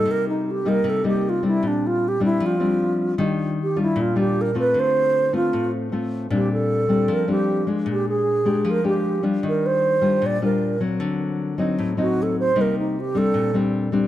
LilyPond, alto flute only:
\new Staff \with { instrumentName = "Alto flute" } { \time 4/4 \key bes \major \tempo 4 = 154 bes'8 ees'8 g'8 bes'8 a'8 g'8 f'8 e'8 | d'8 f'8 g'8 e'8 f'2 | r4 g'8 e'8 f'8 g'8 bes'8 ces''8 | c''4. f'4 r4. |
g'8 a'4. bes'8 g'4 r8 | g'8 aes'4. bes'8 g'4 r8 | bes'8 c''4. d''8 bes'4 r8 | r2 r8 fis'8 a'8 c''8 |
bes'8 ees'8 g'8 a'4 r4. | }